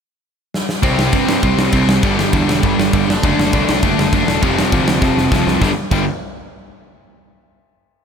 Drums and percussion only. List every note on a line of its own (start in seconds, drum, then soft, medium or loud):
0.54 snare medium
0.69 snare medium
0.83 kick loud
0.83 crash medium
0.99 snare loud
1.13 kick loud
1.13 crash medium
1.29 snare loud
1.43 kick loud
1.43 crash medium
1.59 snare loud
1.72 kick loud
1.72 crash medium
1.89 snare loud
2.03 kick loud
2.03 crash medium
2.19 snare loud
2.33 kick loud
2.33 crash medium
2.49 snare loud
2.63 kick loud
2.63 crash medium
2.80 snare loud
2.93 kick loud
2.93 crash medium
3.10 snare loud
3.23 kick loud
3.23 crash medium
3.39 snare loud
3.53 kick loud
3.53 crash medium
3.69 snare loud
3.83 kick loud
3.83 crash medium
3.99 snare loud
4.12 kick loud
4.12 crash medium
4.28 snare loud
4.43 kick loud
4.43 crash medium
4.59 snare loud
4.72 kick loud
4.72 crash medium
4.88 snare loud
5.02 kick loud
5.02 snare medium
5.18 snare medium
5.32 kick loud
5.32 snare loud
5.47 snare medium
5.62 kick loud
5.62 snare medium
5.91 kick loud
5.91 crash medium